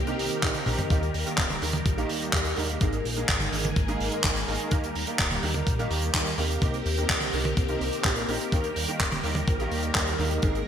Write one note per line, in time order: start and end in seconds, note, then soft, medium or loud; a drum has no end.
0.00 0.15 C2 medium
0.00 8.48 D#3 medium
0.00 0.87 A#3 medium
0.00 0.89 C4 medium
0.00 2.77 G4 medium
0.00 2.77 A#4 medium
0.07 0.40 C3 medium
0.07 0.40 C4 medium
0.07 0.40 D#4 medium
0.07 0.40 G4 medium
0.07 0.40 A#4 loud
0.07 closed hi-hat medium
0.19 0.29 C2 medium
0.19 open hi-hat loud
0.31 closed hi-hat medium
0.43 0.53 A#1 medium
0.43 0.56 C3 medium
0.43 0.56 C4 medium
0.43 0.56 D#4 medium
0.43 0.56 G4 medium
0.43 0.56 A#4 medium
0.43 kick loud
0.43 clap loud
0.43 closed hi-hat medium
0.54 closed hi-hat medium
0.54 high tom medium
0.66 0.77 A#1 medium
0.66 0.87 C4 medium
0.66 0.87 D#4 medium
0.66 0.87 G4 medium
0.66 0.87 A#4 loud
0.66 open hi-hat loud
0.66 mid tom medium
0.79 closed hi-hat medium
0.79 mid tom medium
0.90 1.10 D#2 loud
0.90 1.04 D#3 medium
0.90 2.79 G3 medium
0.90 10.68 A#3 medium
0.90 1.04 A#3 medium
0.90 1.04 D#4 medium
0.90 1.04 G4 medium
0.90 1.04 A#4 medium
0.90 kick loud
0.90 closed hi-hat loud
1.03 closed hi-hat medium
1.14 1.24 D#2 medium
1.14 open hi-hat loud
1.26 1.59 D#3 medium
1.26 1.59 A#3 medium
1.26 1.59 D#4 medium
1.26 1.59 G4 medium
1.26 1.59 A#4 medium
1.26 closed hi-hat medium
1.38 1.58 D#1 loud
1.38 kick loud
1.38 clap loud
1.38 closed hi-hat loud
1.50 closed hi-hat medium
1.50 high tom medium
1.62 1.82 D#2 medium
1.62 1.75 D#3 medium
1.62 1.75 A#3 medium
1.62 1.75 D#4 medium
1.62 1.75 G4 medium
1.62 1.75 A#4 medium
1.62 open hi-hat loud
1.73 closed hi-hat medium
1.73 high tom medium
1.86 2.06 A#1 loud
1.86 kick loud
1.86 closed hi-hat loud
1.98 2.31 D#3 medium
1.98 2.31 A#3 medium
1.98 2.30 D#4 medium
1.98 2.30 G4 medium
1.98 2.30 A#4 loud
1.98 closed hi-hat medium
2.09 2.29 D#2 medium
2.09 open hi-hat loud
2.22 closed hi-hat medium
2.33 2.53 D#2 medium
2.33 2.47 D#3 medium
2.33 2.47 A#3 medium
2.33 2.47 D#4 medium
2.33 2.47 G4 medium
2.33 2.47 A#4 medium
2.33 kick loud
2.33 clap loud
2.33 closed hi-hat loud
2.45 closed hi-hat medium
2.56 2.77 D#2 medium
2.56 2.77 G#2 medium
2.56 2.77 A#3 medium
2.56 2.77 D#4 medium
2.56 2.77 G4 medium
2.56 2.77 A#4 loud
2.56 open hi-hat loud
2.69 closed hi-hat medium
2.81 3.01 G#1 medium
2.81 2.94 G#2 medium
2.81 4.70 G#3 medium
2.81 2.94 A#3 medium
2.81 2.94 D#4 medium
2.81 2.94 G#4 medium
2.81 4.70 G#4 medium
2.81 2.94 A#4 medium
2.81 10.68 A#4 loud
2.81 kick loud
2.81 closed hi-hat loud
2.93 closed hi-hat medium
3.05 3.25 A#1 loud
3.05 open hi-hat loud
3.16 3.50 G#2 medium
3.16 3.50 A#3 medium
3.16 3.50 D#4 medium
3.16 3.50 G#4 medium
3.16 3.50 A#4 medium
3.16 closed hi-hat medium
3.29 3.49 G#1 medium
3.29 kick loud
3.29 clap loud
3.29 closed hi-hat loud
3.40 closed hi-hat medium
3.40 high tom medium
3.53 3.72 G#1 medium
3.53 3.66 G#2 medium
3.53 3.66 A#3 medium
3.53 3.66 D#4 medium
3.53 3.66 G#4 medium
3.53 3.66 A#4 medium
3.53 open hi-hat loud
3.65 closed hi-hat medium
3.65 high tom medium
3.76 3.96 G#1 loud
3.76 kick loud
3.76 closed hi-hat medium
3.88 4.21 G#2 loud
3.88 4.21 A#3 medium
3.88 4.21 D#4 medium
3.88 4.21 G#4 medium
3.88 4.21 A#4 loud
3.88 closed hi-hat medium
4.00 4.10 G#1 medium
4.00 open hi-hat loud
4.12 closed hi-hat medium
4.24 4.44 G#1 loud
4.24 4.37 G#2 medium
4.24 4.37 A#3 medium
4.24 4.37 D#4 medium
4.24 4.37 G#4 medium
4.24 4.37 A#4 medium
4.24 kick loud
4.24 clap loud
4.24 closed hi-hat medium
4.36 closed hi-hat medium
4.48 4.58 G#1 loud
4.48 4.68 D#3 medium
4.48 4.68 A#3 medium
4.48 4.68 D#4 medium
4.48 4.68 G#4 medium
4.48 4.68 A#4 loud
4.48 open hi-hat loud
4.60 closed hi-hat medium
4.71 4.91 D#2 loud
4.71 4.85 D#3 medium
4.71 6.60 G3 medium
4.71 4.85 A#3 medium
4.71 4.85 D#4 medium
4.71 10.39 G4 medium
4.71 4.85 G4 medium
4.71 4.85 A#4 medium
4.71 kick loud
4.71 closed hi-hat loud
4.84 closed hi-hat medium
4.95 5.05 D#2 medium
4.95 open hi-hat loud
5.07 5.40 D#3 medium
5.07 5.40 A#3 medium
5.07 5.40 D#4 medium
5.07 5.40 G4 medium
5.07 5.40 A#4 medium
5.07 closed hi-hat medium
5.19 5.39 D#1 loud
5.19 kick loud
5.19 clap loud
5.19 closed hi-hat loud
5.31 closed hi-hat medium
5.31 high tom medium
5.43 5.63 D#2 medium
5.43 5.56 D#3 medium
5.43 5.56 A#3 medium
5.43 5.56 D#4 medium
5.43 5.56 G4 medium
5.43 5.56 A#4 medium
5.43 open hi-hat loud
5.54 closed hi-hat medium
5.54 high tom medium
5.67 5.87 A#1 loud
5.67 kick loud
5.67 closed hi-hat loud
5.79 6.12 D#3 loud
5.79 6.12 A#3 medium
5.79 6.12 D#4 medium
5.79 6.12 G4 medium
5.79 6.12 A#4 loud
5.79 closed hi-hat medium
5.91 6.10 D#2 medium
5.91 open hi-hat loud
6.02 closed hi-hat medium
6.14 6.34 D#2 medium
6.14 6.28 D#3 medium
6.14 6.28 A#3 medium
6.14 6.28 D#4 medium
6.14 6.28 G4 medium
6.14 6.28 A#4 medium
6.14 kick loud
6.14 clap loud
6.14 closed hi-hat loud
6.26 closed hi-hat medium
6.38 6.58 D#2 medium
6.38 6.58 C3 medium
6.38 6.58 A#3 medium
6.38 6.58 D#4 medium
6.38 6.58 G4 medium
6.38 6.58 A#4 loud
6.38 open hi-hat loud
6.51 closed hi-hat medium
6.62 6.82 C2 medium
6.62 6.75 C3 medium
6.62 8.50 C4 medium
6.62 6.75 C4 medium
6.62 6.75 D#4 medium
6.62 6.75 G4 medium
6.62 6.75 A#4 medium
6.62 kick loud
6.62 closed hi-hat medium
6.74 closed hi-hat medium
6.86 7.06 D#2 loud
6.86 open hi-hat loud
6.97 7.31 C3 medium
6.97 7.31 C4 medium
6.97 7.31 D#4 medium
6.97 7.31 G4 medium
6.97 7.31 A#4 medium
6.97 closed hi-hat medium
7.09 7.29 C2 medium
7.09 kick loud
7.09 clap loud
7.09 closed hi-hat loud
7.21 closed hi-hat medium
7.21 high tom medium
7.33 7.53 C2 medium
7.33 7.47 C3 medium
7.33 7.47 C4 medium
7.33 7.47 D#4 medium
7.33 7.47 G4 medium
7.33 7.47 A#4 medium
7.33 open hi-hat loud
7.45 closed hi-hat medium
7.45 high tom medium
7.57 7.77 C2 loud
7.57 kick loud
7.57 closed hi-hat medium
7.68 8.02 C3 medium
7.68 8.02 C4 medium
7.68 8.02 D#4 medium
7.68 8.02 G4 medium
7.68 8.02 A#4 loud
7.68 closed hi-hat soft
7.81 7.91 C2 medium
7.81 open hi-hat medium
7.93 closed hi-hat medium
8.04 8.25 A#1 medium
8.04 8.18 C3 medium
8.04 8.18 C4 medium
8.04 8.18 D#4 medium
8.04 8.18 G4 medium
8.04 8.18 A#4 medium
8.04 kick loud
8.04 clap loud
8.04 closed hi-hat medium
8.16 closed hi-hat medium
8.28 8.38 A#1 loud
8.28 8.49 C4 medium
8.28 8.49 D#4 medium
8.28 8.49 G4 medium
8.28 8.49 A#4 loud
8.28 open hi-hat loud
8.41 closed hi-hat medium
8.52 8.72 D#2 loud
8.52 10.68 D#3 medium
8.52 8.66 D#3 medium
8.52 10.41 G3 medium
8.52 8.66 A#3 medium
8.52 8.66 D#4 medium
8.52 8.66 G4 medium
8.52 8.66 A#4 medium
8.52 kick loud
8.52 closed hi-hat loud
8.64 closed hi-hat medium
8.76 8.86 D#2 medium
8.76 open hi-hat loud
8.88 9.21 D#3 medium
8.88 9.21 A#3 medium
8.88 9.21 D#4 medium
8.88 9.21 G4 medium
8.88 9.21 A#4 medium
8.88 closed hi-hat medium
9.00 9.20 D#1 loud
9.00 kick loud
9.00 clap loud
9.00 closed hi-hat loud
9.12 closed hi-hat medium
9.12 high tom medium
9.24 9.44 D#2 medium
9.24 9.37 D#3 medium
9.24 9.37 A#3 medium
9.24 9.37 D#4 medium
9.24 9.37 G4 medium
9.24 9.37 A#4 medium
9.24 open hi-hat loud
9.35 closed hi-hat medium
9.35 high tom medium
9.48 9.67 A#1 loud
9.48 kick loud
9.48 closed hi-hat medium
9.60 9.92 D#3 medium
9.60 9.92 A#3 medium
9.60 9.92 D#4 medium
9.60 9.92 G4 medium
9.60 9.92 A#4 loud
9.60 closed hi-hat soft
9.71 9.91 D#2 medium
9.71 open hi-hat loud
9.83 closed hi-hat medium
9.95 10.15 D#2 medium
9.95 10.09 D#3 medium
9.95 10.09 A#3 medium
9.95 10.09 D#4 medium
9.95 10.09 G4 medium
9.95 10.09 A#4 medium
9.95 kick loud
9.95 clap loud
9.95 closed hi-hat medium
10.07 closed hi-hat medium
10.19 10.39 D#2 medium
10.19 10.39 G#2 medium
10.19 10.39 A#3 medium
10.19 10.39 D#4 medium
10.19 10.39 G4 medium
10.19 10.39 A#4 loud
10.19 open hi-hat loud
10.31 closed hi-hat medium
10.42 10.63 G#1 medium
10.42 10.56 G#2 medium
10.42 10.68 G#3 medium
10.42 10.56 A#3 medium
10.42 10.56 D#4 medium
10.42 10.56 G#4 medium
10.42 10.68 G#4 medium
10.42 10.56 A#4 medium
10.42 kick loud
10.42 closed hi-hat medium
10.55 closed hi-hat soft